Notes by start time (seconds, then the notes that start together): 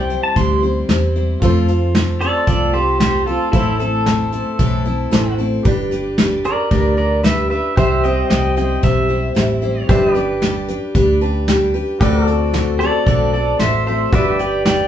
Already playing: C2 C4 E4 G4 C5 G5
0.10 G3 C4 E4 C5, closed hi-hat
0.23 A5
0.36 D2 C3 E3 G3 C4 E4 C5 C6, kick, closed hi-hat
0.62 G3 C4 E4 C5
0.89 E2 G3 C4 E4 C5, snare, closed hi-hat
1.16 G3 C4 E4 C5
1.40 F2 F3 A3 C4 F4 A4, kick, closed hi-hat
1.44 C5
1.68 C4 F4 A4, closed hi-hat
1.95 A3 C4 F4 A4, snare, closed hi-hat
2.21 C4 F4 A4 D5, closed hi-hat
2.47 C2 F3 A3 C4 F4 A4 D5, kick, closed hi-hat
2.73 C4 F4 G4 A4 C5
3.00 A3 C4 F4 G4 A4 C5, snare, closed hi-hat
3.26 C4 F4 A4
3.51 A1 A2 E3 A3 C4 E4 A4, kick, closed hi-hat
3.55 C5
3.79 A3 C4 E4 A4, closed hi-hat
4.06 A3 C4 E4 A4, snare, closed hi-hat
4.32 A3 C4 E4 A4, closed hi-hat
4.59 B1 A2 E3 A3 C4 E4 A4, kick, closed hi-hat
4.85 A3 C4 E4 A4
5.11 A1 A3 C4 E4 A4 C5, snare, closed hi-hat
5.38 A3 C4 E4 A4
5.63 G1 G3 D4 G4 B4 D5, kick, closed hi-hat
5.91 D4 G4 B4, closed hi-hat
6.18 G3 D4 G4 B4, snare, closed hi-hat
6.44 D4 G4 A#4 B4 D5, closed hi-hat
6.71 D2 G3 D4 G4 A#4 B4 D5, kick, closed hi-hat
6.97 D4 G4 A#4 B4 D5
7.23 G3 D4 G4 B4 E5, snare, closed hi-hat
7.50 D4 G4 B4 E5
7.75 C2 C3 E3 G3 C4 E4 G4 C5 E5, kick, closed hi-hat
7.80 E5
8.04 G3 C4 E4 C5 D#5 G5, closed hi-hat
8.30 C2 G3 C4 E4 C5 D#5 G5, snare, closed hi-hat
8.56 G3 C4 E4 C5 D#5 G5, closed hi-hat
8.83 B1 C3 E3 G3 C4 E4 C5 E5, kick, closed hi-hat
9.09 G3 C4 E4 C5
9.35 A1 G3 C4 E4 C5, snare, closed hi-hat
9.62 G3 C4 E4 C5
9.87 G1 G3 D4 G4 B4 C5 D5, kick, closed hi-hat
9.91 E5
10.10 B4
10.15 D4 G4 B4 D5, closed hi-hat
10.42 G3 D4 G4 B4, snare, closed hi-hat
10.68 D4 G4 B4, closed hi-hat
10.95 D2 G3 D4 G4 B4, kick, closed hi-hat
11.21 D4 G4 B4 A5
11.48 G3 D4 G4 B4 G5, snare, closed hi-hat
11.74 D4 G4 B4
11.99 D2 D3 A3 C4 F#4 G4 A4 B4 D5, kick, closed hi-hat
12.03 D5
12.21 F#4
12.27 C4 F#4 A4, closed hi-hat
12.53 A3 C4 F#4 A4, snare, closed hi-hat
12.79 C4 F#4 A4 D5, closed hi-hat
13.06 B1 D3 A3 C4 F#4 A4 D5, kick, closed hi-hat
13.33 C4 F#4 A4 D5
13.59 A1 A3 C4 F#4 A4 C5 E5, snare, closed hi-hat
13.87 C4 F#4 A4 C5 E5
14.11 G1 G3 D4 F#4 G4 B4 E5, kick, closed hi-hat
14.15 B4 D5
14.33 G4
14.39 D4 G4 B4 D5 G5, closed hi-hat
14.65 G3 D4 G4 B4 D5 G5, snare, closed hi-hat